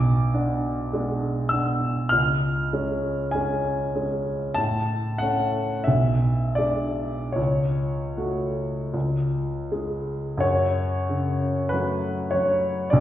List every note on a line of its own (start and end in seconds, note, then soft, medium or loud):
0.00 0.32 B1 medium
0.00 1.50 D6 medium
0.34 0.89 B3 soft
0.34 0.89 D4 medium
0.93 1.48 G#3 soft
0.93 1.48 B3 soft
0.93 1.48 D4 soft
1.49 2.09 B3 soft
1.49 2.09 D4 soft
1.49 2.11 E6 medium
2.09 2.72 C#2 medium
2.09 3.34 F6 loud
2.73 3.31 G#3 soft
2.73 3.31 C#4 medium
3.31 3.92 G#3 soft
3.31 3.92 C#4 medium
3.31 3.94 G#5 medium
3.96 4.54 G#3 soft
3.96 4.54 C#4 soft
4.54 5.20 A2 medium
4.54 5.20 A5 loud
5.18 5.84 A3 soft
5.18 5.84 C#4 medium
5.18 5.86 F#5 medium
5.84 6.57 B1 medium
5.84 6.57 E5 medium
6.55 7.33 G#3 soft
6.55 7.33 D4 soft
6.55 7.35 D5 medium
7.32 8.14 C#2 medium
7.32 9.69 C#5 medium
8.17 8.90 A3 soft
8.17 8.90 F#4 soft
8.94 9.69 C#2 medium
9.72 10.40 G#3 soft
9.72 10.40 G#4 soft
10.38 12.85 F#2 medium
10.38 11.71 C#5 medium
11.09 12.09 C#3 medium
11.69 12.30 F#3 soft
11.69 12.32 B4 medium
11.73 12.30 A3 soft
11.73 12.30 F#4 soft
12.31 12.91 C#5 medium
12.35 12.93 F#3 soft
12.90 13.00 B1 medium
12.90 13.00 D5 medium